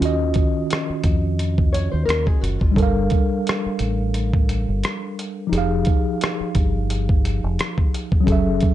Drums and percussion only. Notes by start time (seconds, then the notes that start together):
0.02 closed hi-hat
0.34 kick, closed hi-hat
0.70 cross-stick, closed hi-hat
1.04 kick, closed hi-hat
1.39 closed hi-hat
1.58 kick
1.74 closed hi-hat
2.09 cross-stick, closed hi-hat
2.27 kick
2.44 closed hi-hat
2.61 kick
2.76 kick, closed hi-hat
3.10 kick, closed hi-hat
3.47 cross-stick, closed hi-hat
3.79 closed hi-hat
4.14 closed hi-hat
4.34 kick
4.49 closed hi-hat
4.84 cross-stick, closed hi-hat
5.19 closed hi-hat
5.53 closed hi-hat
5.85 kick, closed hi-hat
6.21 cross-stick, closed hi-hat
6.55 kick, closed hi-hat
6.90 closed hi-hat
7.09 kick
7.25 closed hi-hat
7.59 cross-stick, closed hi-hat
7.78 kick
7.94 closed hi-hat
8.12 kick
8.27 kick, closed hi-hat
8.60 kick, closed hi-hat